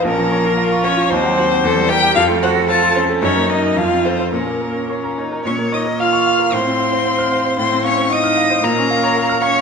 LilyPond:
<<
  \new Staff \with { instrumentName = "Violin" } { \time 2/4 \key bes \minor \tempo 4 = 113 bes'4. des''8 | c''4. g''8 | f''8 ges''8 a''8 r8 | des''8 ees''8 f''8 c''8 |
bes'4. r8 | des'''8 ees'''8 f'''4 | c'''2 | c'''8 des'''8 ees'''4 |
bes''4. des'''8 | }
  \new Staff \with { instrumentName = "Grand piano" } { \time 2/4 \key bes \minor bes,,16 f16 des''16 f'16 f''16 des'''16 f''16 f'16 | ees,16 ges16 c''16 ges'16 e,16 g16 bes'16 g'16 | f,16 a16 c''16 a'16 c''16 c'''16 c''16 a'16 | ges,16 bes16 bes'16 ees'16 f,16 c'16 a'16 c''16 |
bes,16 bes16 bes'16 des'16 des''16 bes''16 des''16 bes'16 | bes,16 bes16 des''16 bes'16 f''16 des'''16 f''16 bes'16 | a,16 c'16 f''16 c''16 f''16 f'''16 f''16 c''16 | a,16 c'16 f''16 c''16 f''16 f'''16 f''16 c''16 |
bes,16 des'16 f''16 des''16 f''16 f'''16 f''16 des''16 | }
  \new Staff \with { instrumentName = "Violin" } { \time 2/4 \key bes \minor des'4 f'4 | ees'8 ges'8 a'8 g'8 | a'4 f'8 des'8 | ees'4 f'4 |
des'4 des'8 ees'8 | des''8 ees''8 f''4 | c''2 | c''8 des''8 ees''4 |
bes'4. des''8 | }
  \new Staff \with { instrumentName = "Cello" } { \time 2/4 \key bes \minor bes4. des'8 | c'4. g'8 | f'8 ges'8 a'8 r8 | des'8 ees'8 f'8 c'8 |
bes4. r8 | des'8 ees'8 f'4 | c'2 | c'8 des'8 ees'4 |
bes4. des'8 | }
>>